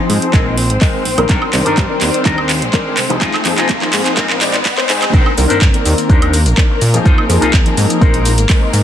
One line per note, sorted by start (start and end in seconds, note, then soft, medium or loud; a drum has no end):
0.00 0.31 F3 medium
0.00 0.31 C4 medium
0.00 5.14 C4 medium
0.00 0.31 D#4 medium
0.00 0.31 G#4 medium
0.00 5.14 C5 medium
0.00 riser medium
0.09 0.18 G#2 medium
0.09 open hi-hat loud
0.22 closed hi-hat medium
0.33 0.71 A#1 medium
0.33 0.53 G#3 medium
0.33 0.46 C4 medium
0.33 0.54 C4 medium
0.33 0.46 D#4 medium
0.33 0.54 D#4 medium
0.33 0.46 G#4 medium
0.33 0.54 A#4 loud
0.33 kick loud
0.33 clap medium
0.33 closed hi-hat medium
0.57 muted clean electric guitar stroke soft
0.57 open hi-hat loud
0.70 0.78 G#1 loud
0.70 closed hi-hat medium
0.81 1.01 G#3 medium
0.81 1.02 C4 medium
0.81 1.02 D#4 medium
0.81 1.02 A#4 loud
0.81 kick loud
0.81 clap medium
0.81 open hi-hat medium
1.05 1.15 A#1 soft
1.05 muted clean electric guitar stroke soft
1.05 open hi-hat loud
1.17 1.26 A#1 loud
1.17 1.50 D#3 medium
1.17 1.51 C4 medium
1.17 1.51 D4 medium
1.17 1.51 A#4 medium
1.17 muted clean electric guitar stroke medium
1.17 closed hi-hat medium
1.17 high woodblock medium
1.29 1.38 C2 medium
1.29 1.42 D4 loud
1.29 1.42 D#4 loud
1.29 1.43 A#4 loud
1.29 kick loud
1.29 clap medium
1.29 closed hi-hat medium
1.42 high woodblock medium
1.53 1.62 C2 loud
1.53 1.87 D#3 medium
1.53 1.87 C4 medium
1.53 1.87 A#4 medium
1.53 1.87 D5 medium
1.53 clap medium
1.53 open hi-hat loud
1.65 1.75 G2 soft
1.65 1.95 D4 medium
1.65 1.96 D#4 medium
1.65 1.96 A#4 medium
1.65 closed hi-hat soft
1.77 1.86 G2 loud
1.77 kick loud
1.77 clap medium
1.77 closed hi-hat medium
1.89 2.22 D#3 medium
1.89 2.22 C4 medium
1.89 2.23 A#4 medium
1.89 2.23 D5 medium
2.01 2.10 D#2 loud
2.01 clap medium
2.01 open hi-hat loud
2.14 closed hi-hat medium
2.25 2.63 D#2 loud
2.25 2.45 D#3 medium
2.25 2.45 C4 medium
2.25 2.38 D4 medium
2.25 2.46 D4 medium
2.25 2.38 D#4 medium
2.25 2.46 A#4 loud
2.25 2.39 A#4 medium
2.25 kick loud
2.25 clap medium
2.25 closed hi-hat medium
2.38 high woodblock medium
2.49 muted clean electric guitar stroke soft
2.49 clap medium
2.49 open hi-hat loud
2.62 2.70 A#1 loud
2.62 closed hi-hat soft
2.73 2.93 D#3 medium
2.73 2.93 C4 medium
2.73 2.94 D4 medium
2.73 2.94 A#4 loud
2.73 kick loud
2.73 clap medium
2.73 closed hi-hat medium
2.97 3.07 C2 soft
2.97 muted clean electric guitar stroke soft
2.97 clap medium
2.97 open hi-hat loud
3.09 3.18 C2 medium
3.09 3.42 F3 medium
3.09 3.43 C4 medium
3.09 3.43 D#4 medium
3.09 3.43 G#4 medium
3.09 muted clean electric guitar stroke medium
3.09 closed hi-hat soft
3.21 3.30 F2 medium
3.21 3.34 D#4 loud
3.21 3.34 F4 loud
3.21 3.35 G#4 loud
3.21 kick loud
3.21 clap medium
3.21 closed hi-hat medium
3.34 clap medium
3.34 high woodblock medium
3.45 3.54 F2 loud
3.45 3.79 F3 medium
3.45 3.79 C4 medium
3.45 3.79 D#4 medium
3.45 3.79 G#4 medium
3.45 muted clean electric guitar stroke soft
3.45 clap medium
3.45 open hi-hat loud
3.58 3.67 C2 soft
3.58 3.88 D#4 medium
3.58 3.88 F4 medium
3.58 3.88 G#4 medium
3.58 clap medium
3.58 closed hi-hat medium
3.69 3.78 C2 loud
3.69 kick loud
3.69 clap medium
3.69 closed hi-hat medium
3.81 4.14 F3 medium
3.81 4.14 C4 medium
3.81 4.15 D#4 medium
3.81 4.15 G#4 medium
3.81 clap medium
3.93 4.02 G#2 loud
3.93 clap loud
3.93 open hi-hat loud
4.06 clap medium
4.06 closed hi-hat medium
4.17 4.56 A#1 loud
4.17 4.37 G#3 loud
4.17 4.30 C4 medium
4.17 4.38 C4 medium
4.17 4.38 D#4 medium
4.17 4.30 D#4 medium
4.17 4.30 G#4 loud
4.17 4.38 A#4 loud
4.17 kick loud
4.17 clap loud
4.17 closed hi-hat medium
4.30 clap medium
4.41 4.54 G#3 medium
4.41 4.54 C4 medium
4.41 4.54 D#4 medium
4.41 4.54 D5 loud
4.41 muted clean electric guitar stroke soft
4.41 clap loud
4.41 open hi-hat loud
4.54 4.62 G#1 loud
4.54 clap medium
4.54 closed hi-hat soft
4.65 kick loud
4.65 clap loud
4.65 open hi-hat medium
4.77 4.87 G#3 loud
4.77 4.87 C4 medium
4.77 4.88 D#4 medium
4.77 4.88 C5 loud
4.77 clap loud
4.89 5.06 G#2 medium
4.89 5.09 G#3 loud
4.89 5.09 C4 medium
4.89 5.09 D#4 medium
4.89 5.10 G#4 loud
4.89 muted clean electric guitar stroke soft
4.89 clap loud
4.89 open hi-hat loud
5.01 muted clean electric guitar stroke medium
5.01 clap loud
5.01 closed hi-hat medium
5.01 high woodblock medium
5.13 5.22 C2 medium
5.13 8.83 A#3 medium
5.13 5.31 D4 loud
5.13 5.32 D#4 loud
5.13 5.32 A#4 loud
5.13 8.83 A#4 medium
5.13 5.32 C5 loud
5.13 kick loud
5.13 shaker soft
5.26 high woodblock medium
5.37 5.46 C2 loud
5.37 5.71 D#3 medium
5.37 5.71 C4 medium
5.37 5.71 A#4 medium
5.37 5.71 D5 medium
5.37 open hi-hat loud
5.37 shaker medium
5.49 5.60 G2 soft
5.49 5.61 D4 medium
5.49 5.61 D#4 medium
5.49 5.62 A#4 medium
5.49 5.62 C5 loud
5.49 closed hi-hat medium
5.49 shaker soft
5.61 5.70 G2 loud
5.61 kick loud
5.61 clap loud
5.61 shaker soft
5.73 6.06 D#3 medium
5.73 6.07 C4 medium
5.73 6.07 A#4 medium
5.73 6.07 D5 medium
5.73 muted clean electric guitar stroke soft
5.73 closed hi-hat medium
5.86 5.94 D#2 loud
5.86 open hi-hat loud
5.86 shaker medium
5.98 closed hi-hat medium
5.98 shaker soft
6.09 6.47 D#2 loud
6.09 6.29 D#3 medium
6.09 6.30 C4 medium
6.09 6.40 D4 medium
6.09 6.30 D4 medium
6.09 6.40 D#4 medium
6.09 6.30 A#4 loud
6.09 6.40 A#4 medium
6.09 6.40 C5 medium
6.09 kick loud
6.09 shaker soft
6.22 closed hi-hat medium
6.22 high woodblock medium
6.34 open hi-hat loud
6.34 shaker medium
6.46 6.54 A#1 loud
6.46 closed hi-hat medium
6.46 shaker soft
6.57 6.77 D#3 medium
6.57 6.77 C4 medium
6.57 6.78 D4 medium
6.57 6.78 A#4 loud
6.57 kick loud
6.57 clap loud
6.57 shaker soft
6.70 muted clean electric guitar stroke medium
6.81 6.98 A#2 medium
6.81 muted clean electric guitar stroke soft
6.81 open hi-hat loud
6.81 shaker medium
6.93 7.26 F3 medium
6.93 7.27 C4 medium
6.93 7.27 D#4 medium
6.93 7.27 G#4 medium
6.93 closed hi-hat medium
6.93 shaker soft
7.05 7.14 F2 medium
7.05 7.23 D#4 loud
7.05 7.24 F4 loud
7.05 7.24 G#4 loud
7.05 7.24 C5 loud
7.05 kick loud
7.05 shaker soft
7.18 high woodblock medium
7.29 7.38 F2 loud
7.29 7.63 F3 medium
7.29 7.63 C4 medium
7.29 7.63 D#4 medium
7.29 7.63 G#4 medium
7.29 open hi-hat loud
7.29 shaker medium
7.41 7.51 C2 soft
7.41 7.53 D#4 medium
7.41 7.53 F4 medium
7.41 7.54 G#4 medium
7.41 7.54 C5 medium
7.41 closed hi-hat medium
7.41 shaker soft
7.54 7.62 C2 loud
7.54 kick loud
7.54 clap loud
7.54 shaker soft
7.66 7.99 F3 medium
7.66 7.99 C4 medium
7.66 7.99 D#4 medium
7.66 7.99 G#4 medium
7.66 muted clean electric guitar stroke soft
7.66 closed hi-hat medium
7.77 7.86 G#2 loud
7.77 open hi-hat loud
7.77 shaker medium
7.90 closed hi-hat medium
7.90 shaker soft
8.01 8.39 A#1 loud
8.01 8.21 G#3 medium
8.01 8.22 C4 medium
8.01 8.31 D#4 medium
8.01 8.22 D#4 medium
8.01 8.32 G#4 medium
8.01 8.22 A#4 loud
8.01 8.32 A#4 medium
8.01 8.32 C5 medium
8.01 kick loud
8.01 shaker soft
8.14 closed hi-hat medium
8.25 open hi-hat loud
8.25 shaker medium
8.38 8.46 G#1 loud
8.38 closed hi-hat medium
8.38 shaker soft
8.49 8.69 G#3 medium
8.49 8.70 C4 medium
8.49 8.70 D#4 medium
8.49 8.70 A#4 loud
8.49 kick loud
8.49 clap loud
8.49 open hi-hat medium
8.49 shaker soft
8.61 muted clean electric guitar stroke medium
8.73 8.83 G#2 medium
8.73 muted clean electric guitar stroke soft
8.73 open hi-hat loud
8.73 shaker medium